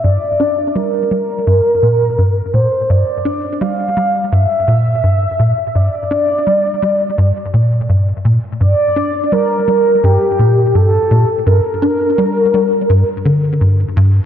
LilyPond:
<<
  \new Staff \with { instrumentName = "Soft synth lead" } { \time 4/4 \key g \dorian \tempo 4 = 84 d''4 bes'2~ bes'8 c''8 | d''4 f''4 e''2 | d''2. r4 | d''4 bes'4 g'4 a'4 |
bes'2. r4 | }
  \new Staff \with { instrumentName = "Analog synth bass" } { \clef bass \time 4/4 \key g \dorian g,8 d'8 g8 g8 g,8 bes,8 g,8 bes,8 | g,8 d'8 g8 g8 g,8 bes,8 g,8 bes,8 | g,8 d'8 g8 g8 g,8 bes,8 g,8 bes,8 | g,8 d'8 g8 g8 g,8 bes,8 g,8 bes,8 |
g,8 d'8 g8 g8 g,8 d8 g,8 g,8 | }
>>